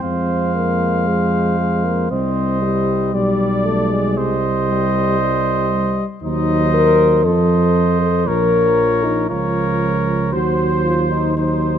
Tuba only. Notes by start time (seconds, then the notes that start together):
0.03 F2
2.11 C2
3.14 B1
4.17 C2
6.23 D#2
7.25 F2
8.28 A#1
9.30 C#2
10.33 D#2